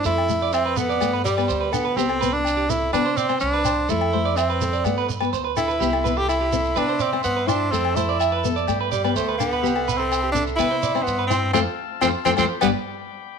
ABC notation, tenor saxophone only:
X:1
M:4/4
L:1/16
Q:1/4=125
K:C
V:1 name="Tenor saxophone"
E4 C2 B,4 G,4 B,2 | C3 D3 E2 D2 C2 D4 | E4 C4 B,2 z4 E2- | E3 G E4 D2 C2 B,2 D2 |
C2 E4 z4 G,2 A,2 B,2- | B,3 C3 D2 E4 B,2 C2 | C z3 C z C C z B, z6 |]